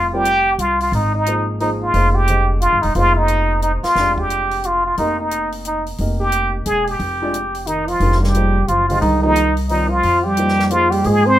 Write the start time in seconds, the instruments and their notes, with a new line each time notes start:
Already playing: upright bass F1, muted trumpet F4
0.13 grand piano G3 C4 F4 A#4 D5, muted trumpet G4
0.25 closed hi-hat
0.58 upright bass C2, muted trumpet F4, closed hi-hat
0.80 muted trumpet F4, open hi-hat
0.92 upright bass G#1, muted trumpet D#4, open hi-hat
1.15 muted trumpet D#4
1.26 grand piano F3 A#3 D#4 G#4 C5, closed hi-hat
1.60 grand piano F3 A#3 D#4 G#4 C5, muted trumpet D#4, open hi-hat
1.83 muted trumpet F4
1.94 upright bass F1, grand piano F3 A#3 D#4 G#4 C5, open hi-hat
2.15 muted trumpet G4
2.28 grand piano D3 G#3 G4 C5 D#5, closed hi-hat
2.61 muted trumpet F4, closed hi-hat
2.73 upright bass G1
2.82 upright bass E1, muted trumpet D#4, open hi-hat
2.95 upright bass F1, grand piano F3 A#3 D#4 G#4 C5, muted trumpet F4, open hi-hat
3.17 muted trumpet D#4
3.28 closed hi-hat
3.62 muted trumpet D#4, closed hi-hat
3.83 muted trumpet F4, muted upright bass stroke, snare, open hi-hat
3.96 upright bass F1, grand piano G#3 D4 F4 G4 D5, snare, open hi-hat
4.18 muted trumpet G4, kick
4.30 closed hi-hat
4.51 open hi-hat
4.64 muted trumpet F4, closed hi-hat
4.86 muted trumpet F4
4.97 upright bass F1, grand piano A#3 D#4 G4 A#4 D#5, muted trumpet D#4, open hi-hat
5.20 muted trumpet D#4
5.31 closed hi-hat
5.52 open hi-hat
5.65 muted trumpet D#4, closed hi-hat
5.86 open hi-hat
5.98 upright bass F1, grand piano A#3 D#4 G4 A#4 D#5, open hi-hat
6.20 muted trumpet G4
6.32 closed hi-hat
6.66 upright bass E1, muted trumpet G#4, closed hi-hat
6.87 muted trumpet G4, open hi-hat
6.99 upright bass F1, open hi-hat
7.22 grand piano G#3 D4 F4 G#4 D5
7.34 closed hi-hat
7.55 open hi-hat
7.66 trombone D#3, muted trumpet D#4, closed hi-hat
7.88 trombone F3, muted trumpet F4, open hi-hat
8.00 upright bass F1, grand piano D#3 G#3 D4 G4 A#4, open hi-hat
8.12 snare
8.22 trombone G3, muted trumpet G4, snare
8.34 grand piano F3 A#3 D#4 G#4 C5, closed hi-hat
8.67 upright bass F#1, trombone F3, muted trumpet F4, closed hi-hat
8.88 grand piano D3 G#3 G4 C5 D#5, trombone F3, muted trumpet F4, open hi-hat
9.00 upright bass C2, trombone D#3, muted trumpet D#4, open hi-hat
9.22 trombone D#3, grand piano F3 A#3 D#4 G#4 C5, muted trumpet D#4
9.36 closed hi-hat
9.57 open hi-hat
9.69 trombone D#3, grand piano G3 C4 F4 A#4 D5, muted trumpet D#4, open hi-hat
9.90 trombone F3, muted trumpet F4
10.03 upright bass F2, open hi-hat
10.24 trombone G3, muted trumpet G4
10.37 grand piano F3 A#3 D#4 G4 C5, closed hi-hat
10.48 snare
10.59 snare
10.70 trombone F3, grand piano F3 A#3 D#4 G#4 C5, muted trumpet F4, closed hi-hat
10.91 trombone G3, muted trumpet G4, open hi-hat
11.04 upright bass G#2, grand piano F3 A#3 D#4 G#4 C5, trombone G#3, muted trumpet G#4, open hi-hat
11.26 trombone C4, muted trumpet C5